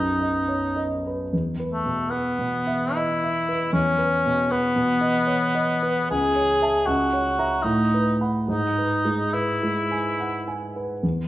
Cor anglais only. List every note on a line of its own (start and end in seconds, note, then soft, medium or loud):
0.00 0.85 D#4 soft
1.72 2.12 A3 soft
2.10 2.96 B3 soft
2.95 3.72 E4 soft
3.73 4.53 C#4 soft
4.51 6.10 B3 soft
6.11 6.87 G#4 medium
6.86 7.64 F#4 soft
7.63 8.17 D#4 soft
8.47 9.35 D#4 soft
9.34 10.62 E4 soft